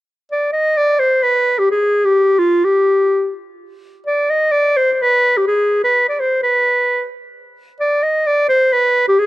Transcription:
clarinet
0.32 D5
0.52 D#5
0.77 D5
0.99 C5
1.23 B4
1.59 G4
1.71 G#4
2.05 G4
2.39 F4
2.65 G4
4.07 D5
4.30 D#5
4.51 D5
4.77 C5
4.93 C5
5.02 B4
5.37 G4
5.47 G#4
5.84 B4
6.09 D5
6.20 C5
6.42 B4
7.80 D5
8.03 D#5
8.26 D5
8.49 C5
8.73 B4
9.08 G4
9.19 G#4

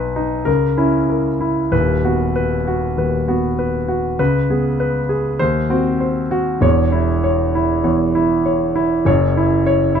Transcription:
grand piano
Already playing: B1 D#4 B4
0.16 D#4
0.45 C#2 A#4
0.77 C#4 E4
1.09 A#4
1.41 E4
1.71 D#1 D#2 B4
2.05 B3 F#4
2.36 B4
2.67 F#4
2.97 D#2 B4
3.28 B3 F#4
3.59 B4
3.88 F#4
4.19 C#2 B4
4.50 B3 G#4
4.80 B4
5.09 G#4
5.39 D#2 C5
5.70 C4 F#4
6.00 C5
6.31 F#4
6.61 E1 E2 C#5
6.92 E4
7.24 C#5
7.55 E4
7.84 E2 C#5
8.15 E4
8.45 C#5
8.76 E4
9.05 F#1 F#2 C#5
9.37 E4
9.66 C#5
9.95 E4

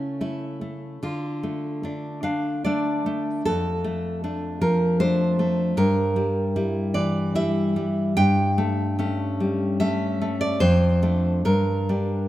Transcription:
nylon-string guitar
Already playing: C#3 A3 C#4 E4
0.21 A3 E4
0.61 A3
1.03 D3 F4
1.43 A3
1.83 A3 D4
2.23 D4 F5
2.64 A3 D4 D5
3.06 A3
3.45 F2 A4
3.84 A3
4.24 A3 D4
4.61 F3 A#4
5.00 A3 D4 C5
5.39 A3
5.77 G2 A#4
6.16 G3
6.56 G3 E4
6.94 E3 D5
7.35 G3 E4 E5
7.76 G3
8.17 G2 G5
8.58 A3
8.99 A3 C#4
9.40 G3
9.80 A3 C#4 E5
10.21 A3
10.41 D5
10.60 F2 C5
11.02 A3 D4
11.45 G2 A#4
11.89 G3 D4

